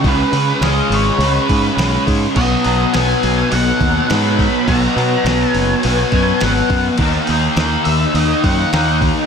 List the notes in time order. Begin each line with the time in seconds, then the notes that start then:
0.04 C#2 C#3 G#3 C#4, kick, open hi-hat
0.08 B4
0.32 C#3 G#3 C#4, open hi-hat
0.61 C#2 C#3 G#3 C#4 D#5, snare, open hi-hat
0.90 G#1, open hi-hat
0.94 C#5
1.18 C#2 C#3 G#3, open hi-hat
1.22 C#4 B4
1.49 G#2, kick, open hi-hat
1.76 B1 C#3 G#3 C#4, snare, open hi-hat
2.07 G#2, kick, open hi-hat
2.35 B1 B2 F#3 B3 D#5, kick, crash
2.64 B1 F#3 B3, open hi-hat
2.93 B1 B2 F#3 B3 G#5, snare, open hi-hat
3.23 B1, open hi-hat
3.50 B1 B2 F#3 B3 F#5, open hi-hat
3.80 D#2, kick, open hi-hat
4.08 G#2 B2 F#3 B3 B5, snare, open hi-hat
4.39 kick, snare, open hi-hat
4.65 B1 B2 F#3 B3 A#5, kick, open hi-hat
4.95 B2 F#3 B3, open hi-hat
5.24 B1 B2 F#3 B3, snare, open hi-hat
5.50 F#1 G#5
5.54 open hi-hat
5.83 B1 B2 F#3 B3 G#5, open hi-hat
6.12 F#2, kick, open hi-hat
6.41 G#1 B2 F#3 B3 F#5, snare, open hi-hat
6.69 F#2, kick, open hi-hat
6.98 D#2 D#3 A#3, kick, crash
7.02 D#4
7.27 D#2 A#3 D#4, open hi-hat
7.56 D#2 D#3 A#3 D#4, snare, open hi-hat
7.84 D#2 E5, open hi-hat
8.14 D#2 D#3 A#3 D#4 D#5, open hi-hat
8.44 F#2 F#5, kick, open hi-hat
8.72 D#2 D#3 A#3 D#4, snare, open hi-hat
9.01 kick, snare, open hi-hat